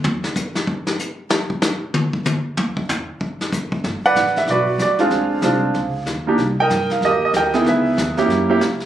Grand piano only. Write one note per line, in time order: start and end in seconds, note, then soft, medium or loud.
4.06 4.50 B4 medium
4.06 4.49 D5 medium
4.06 4.37 F#5 loud
4.38 4.48 E5 medium
4.50 5.09 F#4 medium
4.50 5.09 B4 medium
4.50 4.78 D5 medium
4.82 5.01 D5 medium
4.99 5.41 G#3 medium
4.99 5.41 C4 medium
4.99 5.41 D4 medium
4.99 5.41 F4 medium
4.99 6.04 G#4 medium
4.99 5.72 C5 medium
4.99 6.03 F5 medium
5.44 5.75 G#3 medium
5.44 5.75 C4 medium
5.44 5.75 D4 medium
5.44 5.76 F4 medium
6.27 6.37 A#3 medium
6.27 6.38 D4 medium
6.27 6.38 D#4 medium
6.27 6.38 G4 medium
6.60 7.04 A#4 medium
6.60 7.03 D#5 medium
6.60 6.89 G5 loud
6.92 7.02 F5 medium
7.05 7.63 G4 medium
7.05 7.35 A#4 medium
7.05 7.23 D#5 medium
7.25 7.30 D#5 medium
7.37 7.65 A#4 medium
7.37 7.65 D#5 medium
7.37 7.65 G5 medium
7.54 7.95 B3 medium
7.54 7.95 D#4 medium
7.54 7.95 E4 medium
7.54 7.67 G#4 medium
7.68 8.26 G#4 medium
7.68 8.26 B4 medium
7.68 8.78 E5 medium
8.17 8.47 A#3 medium
8.17 8.47 C#4 medium
8.17 8.47 E4 medium
8.17 8.47 G4 medium
8.49 8.60 A#3 medium
8.49 8.60 C#4 medium
8.49 8.60 E4 medium
8.49 8.60 G4 medium